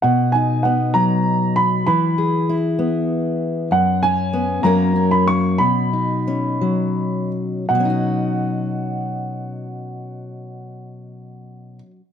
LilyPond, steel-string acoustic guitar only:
\new Staff \with { instrumentName = "Steel-string acoustic guitar" } { \time 6/8 \key b \major \tempo 4. = 61 << { r8 dis'8 b2 | r8 gis'8 e'2 | r8 cis'8 b8 <fis ais cis' ais'>8 cis'8 ais8 | r8 dis'8 cis'2 |
<fis cis' dis' fis'>2.~ | <fis cis' dis' fis'>2. | } \\ { b,4. fis4. | e4. b4. | fis,4. fis,4. | b,4. fis4. |
b,2.~ | b,2. | } >> }